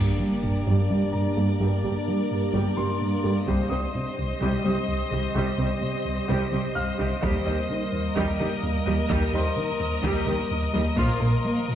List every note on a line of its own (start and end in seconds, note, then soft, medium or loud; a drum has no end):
0.00 0.11 G2 medium
0.00 3.44 A#3 medium
0.00 3.44 D4 medium
0.00 0.11 G4 medium
0.00 3.44 G4 medium
0.00 3.44 A#4 medium
0.00 3.44 D5 medium
0.00 1.10 G5 soft
0.00 sub drop medium
0.19 0.34 G3 soft
0.43 0.57 G2 soft
0.43 taiko soft
0.66 0.74 G1 medium
0.66 0.81 G2 medium
0.66 0.75 G2 soft
0.66 0.88 G3 soft
0.66 0.81 G3 medium
0.66 0.88 G4 soft
0.90 0.98 G1 soft
0.90 0.99 G2 soft
0.90 1.04 G3 soft
0.90 0.98 G3 soft
0.90 1.04 D4 soft
0.90 0.98 G4 soft
1.12 1.27 G2 soft
1.12 2.50 A#5 soft
1.36 1.44 G1 soft
1.36 1.51 G2 medium
1.36 1.46 G2 soft
1.36 1.45 G3 soft
1.36 1.51 A#3 medium
1.36 1.45 G4 soft
1.60 1.68 G1 medium
1.60 1.74 G2 medium
1.60 1.69 G2 medium
1.60 1.82 G3 soft
1.60 1.75 G3 medium
1.60 1.82 G4 soft
1.83 1.91 G1 soft
1.83 1.98 G2 medium
1.83 1.93 G2 soft
1.83 1.91 G3 soft
1.83 1.91 G4 soft
1.83 1.98 G4 medium
2.08 2.22 G3 medium
2.31 2.45 G2 soft
2.53 2.61 G1 medium
2.53 2.62 G2 medium
2.53 2.68 G2 medium
2.53 2.75 G3 medium
2.53 2.68 G3 medium
2.53 2.76 G4 medium
2.77 2.85 G1 soft
2.77 2.85 G2 soft
2.77 2.85 G3 soft
2.77 2.92 G3 medium
2.77 2.91 D4 medium
2.77 2.85 G4 soft
2.77 4.14 C6 soft
3.01 3.15 G2 medium
3.24 3.32 G1 soft
3.24 3.32 G2 soft
3.24 3.39 G2 medium
3.24 3.32 G3 soft
3.24 3.38 A#3 medium
3.24 3.32 G4 soft
3.47 3.55 C2 medium
3.47 3.62 C2 medium
3.47 3.55 C3 medium
3.47 3.62 C3 medium
3.47 7.22 G3 medium
3.47 3.69 G3 soft
3.47 7.23 C4 medium
3.47 3.69 G4 medium
3.47 7.18 G4 medium
3.47 8.12 C5 soft
3.47 7.22 D#5 medium
3.47 7.22 D#5 soft
3.47 taiko medium
3.70 3.79 C2 soft
3.70 3.85 C2 medium
3.70 3.79 C3 soft
3.70 3.79 G3 soft
3.70 3.85 C4 medium
3.70 3.79 G4 soft
3.70 4.63 D#6 soft
3.95 4.09 C3 medium
4.18 4.32 C2 soft
4.41 4.55 C2 medium
4.41 4.50 C2 medium
4.41 4.49 C3 medium
4.41 4.55 C3 medium
4.41 4.63 G3 medium
4.41 4.63 G4 medium
4.64 4.73 C2 soft
4.64 4.73 C3 soft
4.64 4.79 C3 medium
4.64 4.73 G3 soft
4.64 4.79 G3 medium
4.64 4.72 G4 soft
4.64 6.01 D#6 soft
4.88 5.02 C2 medium
5.11 5.19 C2 soft
5.11 5.26 C2 soft
5.11 5.20 C3 soft
5.11 5.26 D#3 medium
5.11 5.20 G3 soft
5.11 5.19 G4 soft
5.35 5.43 C2 medium
5.35 5.49 C2 medium
5.35 5.49 C3 medium
5.35 5.43 C3 medium
5.35 5.57 G3 medium
5.35 5.57 G4 medium
5.58 5.72 C2 medium
5.58 5.66 C2 soft
5.58 5.67 C3 soft
5.58 5.66 G3 soft
5.58 5.73 C4 medium
5.58 5.66 G4 soft
5.81 5.96 C3 medium
6.05 6.19 C2 medium
6.28 6.37 C2 medium
6.28 6.43 C2 medium
6.28 6.43 C3 medium
6.28 6.37 C3 medium
6.28 6.50 G3 medium
6.28 6.50 G4 medium
6.52 6.60 C2 medium
6.52 6.66 C3 medium
6.52 6.60 C3 soft
6.52 6.60 G3 soft
6.52 6.66 G3 medium
6.52 6.60 G4 soft
6.75 6.90 C2 medium
6.75 8.12 F5 soft
6.75 8.12 F6 medium
6.99 7.07 C2 medium
6.99 7.13 C2 medium
6.99 7.08 C3 soft
6.99 7.13 D#3 medium
6.99 7.07 G3 medium
6.99 7.07 G4 medium
7.22 7.30 D#2 medium
7.22 7.37 D#2 medium
7.22 7.37 D#3 medium
7.22 7.31 D#3 medium
7.22 7.44 G3 medium
7.22 10.94 G3 medium
7.22 10.96 A#3 medium
7.22 7.44 G4 medium
7.22 10.96 A#4 medium
7.22 10.94 D#5 medium
7.22 11.75 D#5 medium
7.22 taiko loud
7.45 7.54 D#2 medium
7.45 7.60 D#2 medium
7.45 7.54 D#3 soft
7.45 7.54 G3 soft
7.45 7.61 D#4 medium
7.45 7.53 G4 medium
7.70 7.84 D#3 medium
7.92 8.07 D#2 medium
8.16 8.30 D#2 medium
8.16 8.24 D#2 medium
8.16 8.24 D#3 medium
8.16 8.31 D#3 medium
8.16 8.38 G3 medium
8.16 8.38 G4 medium
8.16 10.96 A#4 medium
8.16 taiko medium
8.39 8.48 D#2 soft
8.39 8.54 D#3 medium
8.39 8.48 D#3 soft
8.39 8.47 G3 medium
8.39 8.54 A#3 medium
8.39 8.48 G4 medium
8.63 8.77 D#2 medium
8.86 9.01 D#2 medium
8.86 8.95 D#2 medium
8.86 8.95 D#3 soft
8.86 8.94 G3 medium
8.86 9.01 G3 medium
8.86 8.94 G4 medium
9.09 9.17 D#2 medium
9.09 9.24 D#2 medium
9.09 9.24 D#3 medium
9.09 9.19 D#3 medium
9.09 9.32 G3 medium
9.09 9.32 G4 medium
9.09 taiko medium
9.33 9.41 D#2 soft
9.33 9.47 D#2 medium
9.33 9.42 D#3 soft
9.33 9.41 G3 medium
9.33 9.47 D#4 medium
9.33 9.41 G4 medium
9.33 10.70 C5 soft
9.33 10.71 C6 soft
9.56 9.71 D#3 medium
9.80 9.94 D#2 medium
9.80 11.17 D#6 soft
10.03 10.17 D#2 medium
10.03 10.11 D#2 medium
10.03 10.17 D#3 medium
10.03 10.11 D#3 medium
10.03 10.25 G3 medium
10.03 10.25 G4 medium
10.03 taiko medium
10.26 10.35 D#2 soft
10.26 10.41 D#3 medium
10.26 10.36 D#3 soft
10.26 10.34 G3 medium
10.26 10.41 A#3 medium
10.26 10.34 G4 soft
10.51 10.65 D#2 medium
10.73 10.82 D#2 medium
10.73 10.88 D#2 medium
10.73 10.82 D#3 soft
10.73 10.88 G3 medium
10.73 10.81 G3 medium
10.73 10.81 G4 medium
10.96 11.05 A#1 medium
10.96 11.12 A#2 medium
10.96 11.05 A#2 medium
10.96 11.75 F3 medium
10.96 11.19 A#3 medium
10.96 11.11 A#3 medium
10.96 11.75 A#3 medium
10.96 11.19 F4 medium
10.96 11.75 A#4 medium
10.96 11.75 C5 soft
10.96 11.75 F5 medium
10.96 11.75 C6 soft
10.96 taiko loud
11.20 11.29 A#1 medium
11.20 11.29 A#2 soft
11.20 11.35 A#2 medium
11.20 11.28 A#3 soft
11.20 11.28 F4 soft
11.20 11.34 A#4 medium
11.45 11.59 A#3 medium
11.68 11.75 A#2 medium